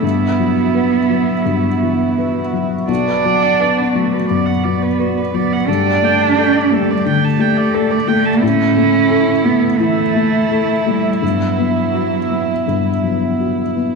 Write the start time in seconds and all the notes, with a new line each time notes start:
Already playing: E5
0.02 G2 B3 E4 F#4
0.39 F#3
0.75 B4
1.09 F#3
1.45 G2
1.82 E3
2.18 B4
2.53 F#3
2.88 B1 D4 F#4 D5
3.07 B4
3.25 F#3 D5
3.42 F#5
3.60 B4 D5
3.77 B4
3.95 F#3 A3 F#4
4.13 B4
4.29 F#2 B3 D5
4.46 F#5
4.64 F#3 D5
4.82 B4
4.99 F#4 B4
5.17 B4
5.33 F#3 B3 D5
5.53 F#5
5.67 G2 A3 D4 G4 A4
5.87 D5
6.02 A3 G5
6.21 A5
6.38 A4 G5
6.56 D5
6.72 G3 A3 A4
6.91 D5
7.06 D3 A3 G5
7.24 A5
7.39 A3 G5
7.57 D5
7.74 A4
7.91 D5
8.07 A3 G5
8.25 A5
8.41 A2 C#4 E4 E5
8.76 A3
9.10 A4
9.44 A3 B3
9.80 E3 A3 E4
10.15 A3
10.51 A4
10.86 G3 A3
11.22 G2 F#3 B3 E4
11.58 B3
11.94 F#4
12.31 B3
12.68 G2
13.04 F#3
13.39 F#4
13.76 B3